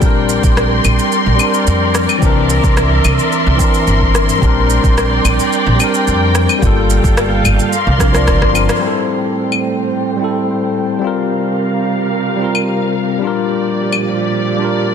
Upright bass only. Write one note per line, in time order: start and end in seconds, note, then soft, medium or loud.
0.02 0.40 A#1 medium
0.44 0.81 A#1 medium
0.85 0.96 A#1 medium
1.26 1.37 A#1 medium
1.67 2.05 F2 medium
2.22 2.60 C2 medium
2.64 3.01 C2 medium
3.05 3.17 C2 medium
3.46 3.58 C2 loud
3.87 4.25 G1 medium
4.42 4.80 A#1 medium
4.84 5.21 A#1 medium
5.24 5.37 A#1 medium
5.66 5.78 A#1 loud
6.07 6.45 F2 medium
6.62 7.00 G1 medium
7.04 7.41 G1 medium
7.45 7.57 G1 medium
7.87 8.29 C2 loud
8.28 8.66 G1 medium